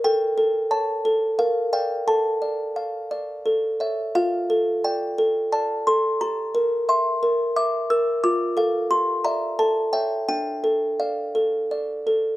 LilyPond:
\new Staff \with { instrumentName = "Music box" } { \time 3/4 \key d \minor \tempo 4 = 88 << { g''4 a''4 f''8 g''8 | a''2~ a''8 r8 | f''4 g''4 a''8 c'''8 | bes''4 c'''4 d'''8 e'''8 |
d'''4 c'''8 bes''8 a''8 g''8 | g''4 f''4. r8 | } \\ { a'8 a'8 cis''8 a'8 bes'8 <d'' f''>8 | a'8 d''8 f''8 d''8 a'8 <cis'' e''>8 | f'8 a'8 d''8 a'8 d''8 a'8 | g'8 bes'8 e''8 bes'8 e''8 bes'8 |
f'8 <a' f''>8 g'8 <d'' e''>8 a'8 <cis'' e''>8 | d'8 a'8 d''8 a'8 d''8 a'8 | } >> }